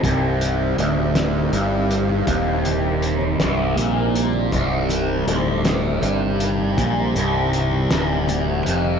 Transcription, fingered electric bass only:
X:1
M:6/8
L:1/8
Q:3/8=53
K:Cm
V:1 name="Fingered electric bass" clef=bass
C,,,2 D,,,2 G,,,2 | E,,,3 C,,, B,,,2 | C,,,2 D,,,2 G,,,2 | B,,, C,,,2 D,,,2 F,,, |]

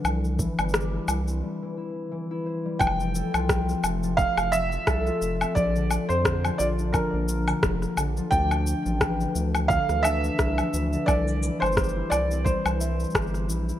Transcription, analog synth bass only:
X:1
M:4/4
L:1/16
Q:"Swing 16ths" 1/4=87
K:F
V:1 name="Analog synth bass" clef=bass
C,,2 z G,,,2 z C,,2 z8 | F,,,2 z C,,2 z F,,,2 z F,,,2 z C,, z F,,, z | B,,,2 z F,,2 z B,,,2 z B,,,2 z F,,, z B,,, z | D,,2 z A,,,2 z D,,2 z D,,2 z C,, z D,, z |
C,,2 z G,,,2 z C,,2 z C,,2 z G,,,2 B,,, z |]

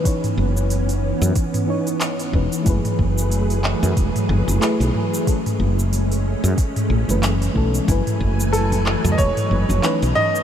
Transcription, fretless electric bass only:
X:1
M:4/4
L:1/16
Q:"Swing 16ths" 1/4=92
K:F#dor
V:1 name="Fretless electric bass" clef=bass
z2 F,,,4 z F,, z6 E,,, z | F,,, z F,,,4 z F,, E,,, z F,,, F,,, z B,,, z2 | z2 F,,,4 z F,, z2 A,,, F,,,2 z B,,, z | F,,, z F,,,4 z F,, E,,, z F,,, F,,, z B,,, z2 |]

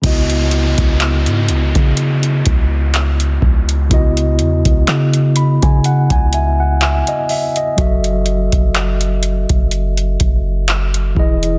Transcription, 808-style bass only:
X:1
M:4/4
L:1/16
Q:"Swing 16ths" 1/4=62
K:C#m
V:1 name="808-style bass" clef=bass
C,,3 C,,2 G,, C,, C,3 C,,4 C,,2 | C,,2 E,, C,, C,3 C,2 C,,4 z3 | F,,,3 F,,,4 F,,,3 F,,,4 E,,,2 |]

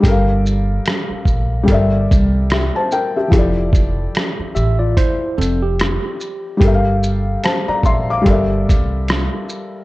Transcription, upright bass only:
X:1
M:4/4
L:1/16
Q:"Swing 16ths" 1/4=73
K:F
V:1 name="Upright bass" clef=bass
G,,,4 z2 B,,,2 G,,,2 C,,3 z3 | F,,,4 z2 A,,,2 z2 F,,,3 z3 | G,,,4 z2 B,,,2 G,,,2 C,,3 z3 |]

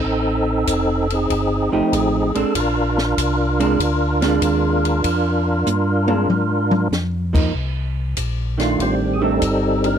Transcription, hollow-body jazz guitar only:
X:1
M:4/4
L:1/8
Q:"Swing" 1/4=96
K:Bb
V:1 name="Hollow-body jazz guitar"
z4 z [F,A,EG]2 [_A,CD] | z3 [_A,CD] z [A,CD]3 | z3 [_A,CD] z3 [F,B,E] | z3 [E,A,D]2 [E,A,D] z2 |]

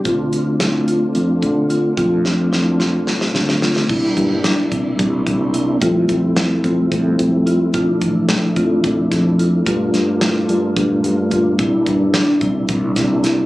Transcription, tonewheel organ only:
X:1
M:7/8
L:1/8
Q:1/4=109
K:Dm
V:1 name="Tonewheel organ"
[A,CDF]6- [A,CDF]- | [A,CDF]6- [A,CDF] | [G,B,DE]6- [G,B,DE] | [G,A,CE]6- [G,A,CE] |
[F,A,DE]6- [F,A,DE] | [A,B,DF]6- [A,B,DF] | [G,B,DE]6- [G,B,DE] |]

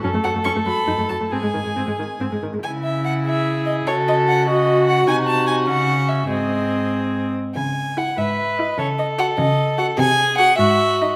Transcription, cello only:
X:1
M:6/8
L:1/16
Q:3/8=97
K:C#m
V:1 name="Cello" clef=bass
F,, F,, F,, F,, F,, F,, F,, z F,, F,, F,, F,, | G,, G,, G,, G,, G,, G,, G,, z G,, G,, G,, G,, | C,12 | C,12 |
^B,,6 C,6 | G,,8- G,,2 z2 | C,4- C, z G,,4- G,, z | C,4- C, z C,4- C, z |
^B,,4- B,, z G,,4- G,, z |]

